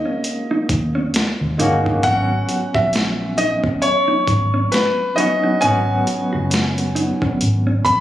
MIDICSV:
0, 0, Header, 1, 8, 480
1, 0, Start_track
1, 0, Key_signature, 5, "minor"
1, 0, Tempo, 895522
1, 1090, Time_signature, 4, 2, 24, 8
1, 4290, End_track
2, 0, Start_track
2, 0, Title_t, "Grand piano"
2, 0, Program_c, 0, 0
2, 0, Note_on_c, 0, 75, 73
2, 829, Note_off_c, 0, 75, 0
2, 1092, Note_on_c, 0, 78, 90
2, 1470, Note_on_c, 0, 76, 87
2, 1483, Note_off_c, 0, 78, 0
2, 1810, Note_on_c, 0, 75, 79
2, 1819, Note_off_c, 0, 76, 0
2, 1864, Note_off_c, 0, 75, 0
2, 2046, Note_on_c, 0, 73, 76
2, 2528, Note_on_c, 0, 71, 79
2, 2542, Note_off_c, 0, 73, 0
2, 2764, Note_on_c, 0, 75, 74
2, 2776, Note_off_c, 0, 71, 0
2, 3006, Note_on_c, 0, 80, 92
2, 3014, Note_off_c, 0, 75, 0
2, 4205, Note_on_c, 0, 83, 89
2, 4290, Note_off_c, 0, 80, 0
2, 4290, Note_off_c, 0, 83, 0
2, 4290, End_track
3, 0, Start_track
3, 0, Title_t, "Clean electric guitar"
3, 0, Program_c, 1, 27
3, 29, Note_on_c, 1, 61, 57
3, 91, Note_off_c, 1, 61, 0
3, 273, Note_on_c, 1, 63, 72
3, 334, Note_off_c, 1, 63, 0
3, 510, Note_on_c, 1, 61, 78
3, 572, Note_off_c, 1, 61, 0
3, 853, Note_on_c, 1, 63, 70
3, 940, Note_off_c, 1, 63, 0
3, 995, Note_on_c, 1, 63, 72
3, 1055, Note_off_c, 1, 63, 0
3, 1093, Note_on_c, 1, 61, 75
3, 1180, Note_off_c, 1, 61, 0
3, 1474, Note_on_c, 1, 66, 73
3, 1535, Note_off_c, 1, 66, 0
3, 1813, Note_on_c, 1, 63, 64
3, 1900, Note_off_c, 1, 63, 0
3, 1948, Note_on_c, 1, 61, 63
3, 2011, Note_off_c, 1, 61, 0
3, 2186, Note_on_c, 1, 63, 64
3, 2249, Note_off_c, 1, 63, 0
3, 2433, Note_on_c, 1, 61, 71
3, 2494, Note_off_c, 1, 61, 0
3, 2773, Note_on_c, 1, 63, 65
3, 2860, Note_off_c, 1, 63, 0
3, 2913, Note_on_c, 1, 63, 67
3, 2974, Note_off_c, 1, 63, 0
3, 3013, Note_on_c, 1, 61, 82
3, 3100, Note_off_c, 1, 61, 0
3, 3391, Note_on_c, 1, 66, 71
3, 3453, Note_off_c, 1, 66, 0
3, 3727, Note_on_c, 1, 63, 61
3, 3816, Note_off_c, 1, 63, 0
3, 3872, Note_on_c, 1, 61, 64
3, 3933, Note_off_c, 1, 61, 0
3, 4110, Note_on_c, 1, 61, 64
3, 4172, Note_off_c, 1, 61, 0
3, 4290, End_track
4, 0, Start_track
4, 0, Title_t, "Tine electric piano"
4, 0, Program_c, 2, 4
4, 0, Control_c, 2, 64, 127
4, 0, Note_on_c, 2, 56, 68
4, 0, Note_on_c, 2, 58, 66
4, 0, Note_on_c, 2, 61, 61
4, 0, Note_on_c, 2, 66, 74
4, 847, Note_off_c, 2, 56, 0
4, 847, Note_on_c, 2, 56, 82
4, 855, Note_off_c, 2, 58, 0
4, 855, Note_on_c, 2, 58, 83
4, 863, Note_off_c, 2, 61, 0
4, 863, Note_on_c, 2, 61, 78
4, 871, Note_off_c, 2, 66, 0
4, 871, Note_on_c, 2, 66, 93
4, 1056, Note_off_c, 2, 56, 0
4, 1060, Note_off_c, 2, 58, 0
4, 1064, Note_off_c, 2, 61, 0
4, 1068, Note_off_c, 2, 66, 0
4, 1086, Note_on_c, 2, 54, 63
4, 1096, Note_on_c, 2, 59, 64
4, 1097, Control_c, 2, 64, 0
4, 1101, Note_on_c, 2, 61, 62
4, 1110, Note_on_c, 2, 66, 81
4, 1175, Control_c, 2, 64, 127
4, 1907, Note_off_c, 2, 54, 0
4, 1911, Note_off_c, 2, 59, 0
4, 1914, Note_off_c, 2, 61, 0
4, 1919, Note_off_c, 2, 66, 0
4, 2761, Note_on_c, 2, 54, 70
4, 2771, Note_on_c, 2, 59, 67
4, 2777, Note_on_c, 2, 61, 64
4, 2786, Note_on_c, 2, 66, 82
4, 2973, Note_off_c, 2, 54, 0
4, 2978, Note_off_c, 2, 59, 0
4, 2981, Note_off_c, 2, 61, 0
4, 2986, Note_off_c, 2, 66, 0
4, 3004, Note_on_c, 2, 54, 69
4, 3010, Note_on_c, 2, 59, 69
4, 3019, Note_on_c, 2, 61, 66
4, 3026, Note_on_c, 2, 66, 78
4, 3826, Note_off_c, 2, 54, 0
4, 3828, Note_off_c, 2, 59, 0
4, 3833, Note_off_c, 2, 61, 0
4, 3837, Note_off_c, 2, 66, 0
4, 4290, End_track
5, 0, Start_track
5, 0, Title_t, "Fingered electric bass"
5, 0, Program_c, 3, 33
5, 376, Note_on_c, 3, 39, 82
5, 568, Note_off_c, 3, 39, 0
5, 757, Note_on_c, 3, 39, 78
5, 834, Note_off_c, 3, 39, 0
5, 858, Note_on_c, 3, 31, 87
5, 1049, Note_off_c, 3, 31, 0
5, 1095, Note_on_c, 3, 32, 97
5, 1287, Note_off_c, 3, 32, 0
5, 1476, Note_on_c, 3, 34, 75
5, 1863, Note_off_c, 3, 34, 0
5, 2296, Note_on_c, 3, 32, 82
5, 2488, Note_off_c, 3, 32, 0
5, 3020, Note_on_c, 3, 32, 105
5, 3210, Note_off_c, 3, 32, 0
5, 3399, Note_on_c, 3, 30, 80
5, 3785, Note_off_c, 3, 30, 0
5, 3978, Note_on_c, 3, 32, 83
5, 4169, Note_off_c, 3, 32, 0
5, 4290, End_track
6, 0, Start_track
6, 0, Title_t, "Muted clean electric guitar strokes"
6, 371, Note_on_c, 9, 29, 42
6, 424, Note_off_c, 9, 29, 0
6, 612, Note_on_c, 9, 29, 43
6, 665, Note_off_c, 9, 29, 0
6, 1333, Note_on_c, 9, 29, 42
6, 1387, Note_off_c, 9, 29, 0
6, 1572, Note_on_c, 9, 29, 42
6, 1626, Note_off_c, 9, 29, 0
6, 2290, Note_on_c, 9, 29, 39
6, 2343, Note_off_c, 9, 29, 0
6, 2535, Note_on_c, 9, 29, 42
6, 2588, Note_off_c, 9, 29, 0
6, 3254, Note_on_c, 9, 29, 45
6, 3308, Note_off_c, 9, 29, 0
6, 3487, Note_on_c, 9, 29, 37
6, 3540, Note_off_c, 9, 29, 0
6, 4210, Note_on_c, 9, 29, 43
6, 4263, Note_off_c, 9, 29, 0
6, 4290, End_track
7, 0, Start_track
7, 0, Title_t, "Muted fingered electric bass strokes"
7, 4215, Note_on_c, 9, 29, 41
7, 4269, Note_off_c, 9, 29, 0
7, 4290, End_track
8, 0, Start_track
8, 0, Title_t, "Drums"
8, 129, Note_on_c, 9, 42, 55
8, 183, Note_off_c, 9, 42, 0
8, 371, Note_on_c, 9, 36, 79
8, 373, Note_on_c, 9, 42, 55
8, 425, Note_off_c, 9, 36, 0
8, 426, Note_off_c, 9, 42, 0
8, 610, Note_on_c, 9, 42, 65
8, 622, Note_on_c, 9, 38, 96
8, 664, Note_off_c, 9, 42, 0
8, 675, Note_off_c, 9, 38, 0
8, 855, Note_on_c, 9, 42, 61
8, 909, Note_off_c, 9, 42, 0
8, 999, Note_on_c, 9, 36, 70
8, 1052, Note_off_c, 9, 36, 0
8, 1089, Note_on_c, 9, 42, 66
8, 1090, Note_on_c, 9, 36, 102
8, 1143, Note_off_c, 9, 36, 0
8, 1143, Note_off_c, 9, 42, 0
8, 1333, Note_on_c, 9, 42, 64
8, 1386, Note_off_c, 9, 42, 0
8, 1472, Note_on_c, 9, 36, 77
8, 1525, Note_off_c, 9, 36, 0
8, 1570, Note_on_c, 9, 42, 74
8, 1585, Note_on_c, 9, 38, 110
8, 1624, Note_off_c, 9, 42, 0
8, 1638, Note_off_c, 9, 38, 0
8, 1811, Note_on_c, 9, 42, 55
8, 1865, Note_off_c, 9, 42, 0
8, 1949, Note_on_c, 9, 36, 66
8, 2003, Note_off_c, 9, 36, 0
8, 2049, Note_on_c, 9, 42, 55
8, 2102, Note_off_c, 9, 42, 0
8, 2292, Note_on_c, 9, 36, 83
8, 2293, Note_on_c, 9, 42, 51
8, 2345, Note_off_c, 9, 36, 0
8, 2347, Note_off_c, 9, 42, 0
8, 2531, Note_on_c, 9, 42, 64
8, 2542, Note_on_c, 9, 38, 96
8, 2584, Note_off_c, 9, 42, 0
8, 2595, Note_off_c, 9, 38, 0
8, 2776, Note_on_c, 9, 42, 59
8, 2830, Note_off_c, 9, 42, 0
8, 3011, Note_on_c, 9, 42, 61
8, 3065, Note_off_c, 9, 42, 0
8, 3254, Note_on_c, 9, 42, 64
8, 3307, Note_off_c, 9, 42, 0
8, 3490, Note_on_c, 9, 42, 75
8, 3505, Note_on_c, 9, 38, 104
8, 3544, Note_off_c, 9, 42, 0
8, 3558, Note_off_c, 9, 38, 0
8, 3634, Note_on_c, 9, 42, 46
8, 3687, Note_off_c, 9, 42, 0
8, 3731, Note_on_c, 9, 42, 50
8, 3785, Note_off_c, 9, 42, 0
8, 3869, Note_on_c, 9, 36, 81
8, 3923, Note_off_c, 9, 36, 0
8, 3970, Note_on_c, 9, 42, 62
8, 4024, Note_off_c, 9, 42, 0
8, 4211, Note_on_c, 9, 36, 86
8, 4213, Note_on_c, 9, 42, 54
8, 4265, Note_off_c, 9, 36, 0
8, 4267, Note_off_c, 9, 42, 0
8, 4290, End_track
0, 0, End_of_file